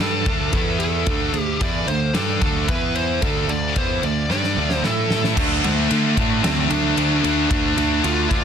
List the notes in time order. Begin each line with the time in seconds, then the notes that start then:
Already playing: A4 F5 D6
0.00 G2 G3 D4 G4
0.26 D2 D3 A3 D4, kick, ride
0.53 E2 E3 B3 E4 A4 B4 E5 E6, kick, ride
0.80 A4, ride
1.06 D2 D3 A3 D4 A4 F5 D6, kick, ride
1.33 D2 D3 A3, ride
1.41 G4
1.60 E2 E3 B3 E4 D5, kick, ride
1.87 D2 D3 A3 C5, ride
2.14 G2 G3 D4 G4 A4, snare, ride
2.41 D2 D3 A3 D4 A4, kick, ride
2.68 E2 E3 B3 E4 B4 E5 E6, kick, ride
2.95 C5, ride
3.21 D2 D3 A3 D4 A4 F5 D6, kick, ride
3.48 D2 D3 A3 D5, ride
3.76 E2 E3 B3 E4 C5, kick, ride
4.02 D2 D3 A3 D5, ride
4.30 G2 G3 D4 G4 D5, snare
4.44 snare
4.57 D2 D3 A3 D4
4.70 snare
4.74 C5
4.83 A2 A3 E4 A4 E5 E6, snare
5.10 snare
5.24 snare
5.37 D2 D3 A3 D4, kick, crash
5.64 D2 D3 A3 D4, ride
5.90 D3 A3 D4, ride
6.17 A2 D3 A3 D4, kick, ride
6.43 D2 D3 A3 C4 D4, snare, ride
6.70 D2 D3 A3 D4, ride
6.97 D2 D3 A3 D4, ride
7.23 D2 D3 A3 D4, ride
7.50 D2 D3 A3 D4, kick, ride
7.77 D2 D3 A3 D4, ride
8.03 D2 D3 A3 D4 F4, ride
8.30 D2 D3 A3 D4 F4, kick, ride